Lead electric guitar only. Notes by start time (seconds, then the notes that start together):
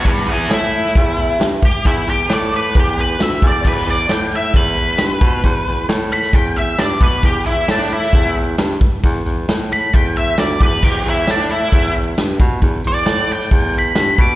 0.05 D4 B4
0.29 B3 G#4
0.53 E4
1.65 G4
1.87 E4
2.10 G4
2.33 D5
2.56 B4
2.80 G4
3.00 B4
3.22 E5
3.47 D5
3.67 B4
3.90 D5
4.12 G5
4.35 E5
4.56 B4
6.13 B5
6.35 G5
6.57 E5
6.80 D5
7.03 B4
7.26 G4
7.46 E4
7.71 D4
7.93 E4
9.73 B5
9.93 G5
10.17 E5
10.40 D5
10.63 B4
10.84 G4
11.09 E4
11.31 D4
11.51 E4
12.88 D5
13.32 G5
13.78 B5
14.21 D6